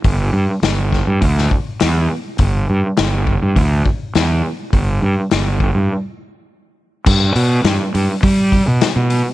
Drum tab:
CC |----------------|----------------|----------------|x---------------|
HH |o---o---o---o---|o---o---o---o---|o---o-----------|--o-o-o-o-o-o-o-|
SD |----o-o--o--o---|----o-------o---|----o-----------|----o-------o---|
BD |o-----o-o-o-----|o-----o-o-o-----|o-----o---------|o-------o-o-----|